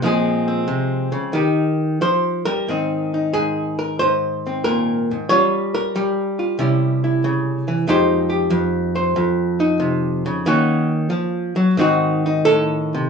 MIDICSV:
0, 0, Header, 1, 2, 480
1, 0, Start_track
1, 0, Key_signature, -4, "minor"
1, 0, Tempo, 660066
1, 27, Time_signature, 4, 2, 24, 8
1, 3387, Tempo, 643777
1, 7707, Tempo, 675676
1, 9585, End_track
2, 0, Start_track
2, 0, Title_t, "Hollow-body jazz guitar"
2, 0, Program_c, 0, 26
2, 17, Note_on_c, 0, 46, 71
2, 24, Note_on_c, 0, 53, 64
2, 31, Note_on_c, 0, 56, 60
2, 35, Note_on_c, 0, 60, 55
2, 41, Note_on_c, 0, 68, 70
2, 339, Note_off_c, 0, 60, 0
2, 347, Note_on_c, 0, 60, 51
2, 489, Note_off_c, 0, 46, 0
2, 492, Note_on_c, 0, 48, 66
2, 812, Note_off_c, 0, 48, 0
2, 815, Note_on_c, 0, 49, 54
2, 961, Note_off_c, 0, 53, 0
2, 968, Note_on_c, 0, 51, 66
2, 969, Note_off_c, 0, 68, 0
2, 974, Note_off_c, 0, 49, 0
2, 974, Note_off_c, 0, 56, 0
2, 976, Note_on_c, 0, 63, 42
2, 977, Note_off_c, 0, 60, 0
2, 980, Note_on_c, 0, 67, 47
2, 985, Note_on_c, 0, 70, 43
2, 1459, Note_off_c, 0, 51, 0
2, 1463, Note_on_c, 0, 53, 63
2, 1465, Note_off_c, 0, 70, 0
2, 1468, Note_on_c, 0, 72, 78
2, 1782, Note_off_c, 0, 72, 0
2, 1785, Note_on_c, 0, 70, 82
2, 1790, Note_off_c, 0, 53, 0
2, 1793, Note_on_c, 0, 55, 48
2, 1929, Note_off_c, 0, 63, 0
2, 1947, Note_off_c, 0, 55, 0
2, 1951, Note_on_c, 0, 44, 56
2, 1956, Note_on_c, 0, 51, 35
2, 1959, Note_on_c, 0, 60, 47
2, 1964, Note_off_c, 0, 67, 0
2, 1967, Note_on_c, 0, 63, 45
2, 2275, Note_off_c, 0, 63, 0
2, 2283, Note_on_c, 0, 63, 40
2, 2422, Note_off_c, 0, 44, 0
2, 2422, Note_off_c, 0, 70, 0
2, 2425, Note_on_c, 0, 68, 80
2, 2431, Note_on_c, 0, 44, 70
2, 2751, Note_off_c, 0, 68, 0
2, 2754, Note_on_c, 0, 70, 65
2, 2901, Note_off_c, 0, 70, 0
2, 2904, Note_on_c, 0, 72, 85
2, 2910, Note_off_c, 0, 44, 0
2, 2918, Note_on_c, 0, 44, 63
2, 3239, Note_off_c, 0, 60, 0
2, 3248, Note_on_c, 0, 60, 43
2, 3374, Note_off_c, 0, 72, 0
2, 3377, Note_on_c, 0, 70, 93
2, 3387, Note_on_c, 0, 46, 64
2, 3718, Note_off_c, 0, 44, 0
2, 3719, Note_off_c, 0, 46, 0
2, 3727, Note_on_c, 0, 44, 53
2, 3855, Note_off_c, 0, 63, 0
2, 3858, Note_off_c, 0, 70, 0
2, 3859, Note_off_c, 0, 60, 0
2, 3861, Note_on_c, 0, 73, 103
2, 3864, Note_off_c, 0, 51, 0
2, 3867, Note_on_c, 0, 55, 77
2, 3874, Note_on_c, 0, 61, 39
2, 3875, Note_off_c, 0, 44, 0
2, 3880, Note_on_c, 0, 65, 47
2, 4194, Note_off_c, 0, 73, 0
2, 4198, Note_on_c, 0, 70, 84
2, 4352, Note_off_c, 0, 55, 0
2, 4355, Note_on_c, 0, 55, 71
2, 4670, Note_off_c, 0, 65, 0
2, 4679, Note_on_c, 0, 65, 41
2, 4811, Note_off_c, 0, 61, 0
2, 4811, Note_off_c, 0, 65, 0
2, 4826, Note_on_c, 0, 48, 80
2, 4827, Note_off_c, 0, 55, 0
2, 4830, Note_on_c, 0, 55, 48
2, 4837, Note_on_c, 0, 61, 41
2, 4838, Note_on_c, 0, 64, 46
2, 5154, Note_off_c, 0, 64, 0
2, 5163, Note_on_c, 0, 64, 47
2, 5314, Note_on_c, 0, 49, 63
2, 5633, Note_off_c, 0, 55, 0
2, 5636, Note_off_c, 0, 49, 0
2, 5639, Note_on_c, 0, 52, 58
2, 5762, Note_off_c, 0, 48, 0
2, 5766, Note_off_c, 0, 61, 0
2, 5767, Note_off_c, 0, 64, 0
2, 5781, Note_off_c, 0, 70, 0
2, 5785, Note_off_c, 0, 52, 0
2, 5786, Note_on_c, 0, 41, 72
2, 5789, Note_on_c, 0, 56, 57
2, 5793, Note_on_c, 0, 63, 66
2, 5797, Note_on_c, 0, 67, 69
2, 5804, Note_on_c, 0, 72, 72
2, 6090, Note_off_c, 0, 67, 0
2, 6099, Note_on_c, 0, 67, 54
2, 6246, Note_off_c, 0, 41, 0
2, 6255, Note_on_c, 0, 41, 78
2, 6582, Note_off_c, 0, 72, 0
2, 6591, Note_on_c, 0, 72, 64
2, 6734, Note_off_c, 0, 41, 0
2, 6744, Note_on_c, 0, 41, 80
2, 7063, Note_off_c, 0, 63, 0
2, 7072, Note_on_c, 0, 63, 64
2, 7218, Note_on_c, 0, 48, 62
2, 7551, Note_off_c, 0, 48, 0
2, 7562, Note_on_c, 0, 49, 68
2, 7683, Note_off_c, 0, 67, 0
2, 7689, Note_off_c, 0, 56, 0
2, 7689, Note_off_c, 0, 63, 0
2, 7690, Note_off_c, 0, 72, 0
2, 7709, Note_off_c, 0, 41, 0
2, 7709, Note_off_c, 0, 49, 0
2, 7714, Note_on_c, 0, 51, 78
2, 7719, Note_on_c, 0, 58, 59
2, 7721, Note_on_c, 0, 61, 66
2, 7725, Note_on_c, 0, 66, 66
2, 8034, Note_off_c, 0, 66, 0
2, 8164, Note_off_c, 0, 51, 0
2, 8167, Note_on_c, 0, 53, 69
2, 8491, Note_off_c, 0, 53, 0
2, 8494, Note_on_c, 0, 54, 73
2, 8638, Note_off_c, 0, 61, 0
2, 8639, Note_off_c, 0, 58, 0
2, 8646, Note_on_c, 0, 44, 71
2, 8648, Note_off_c, 0, 54, 0
2, 8653, Note_on_c, 0, 51, 64
2, 8658, Note_on_c, 0, 60, 63
2, 8661, Note_on_c, 0, 63, 68
2, 8671, Note_on_c, 0, 66, 72
2, 8982, Note_off_c, 0, 63, 0
2, 8991, Note_on_c, 0, 63, 56
2, 9125, Note_off_c, 0, 66, 0
2, 9128, Note_on_c, 0, 69, 125
2, 9135, Note_off_c, 0, 44, 0
2, 9140, Note_on_c, 0, 45, 65
2, 9474, Note_off_c, 0, 45, 0
2, 9478, Note_on_c, 0, 48, 59
2, 9585, Note_off_c, 0, 48, 0
2, 9585, Note_off_c, 0, 51, 0
2, 9585, Note_off_c, 0, 60, 0
2, 9585, Note_off_c, 0, 63, 0
2, 9585, Note_off_c, 0, 69, 0
2, 9585, End_track
0, 0, End_of_file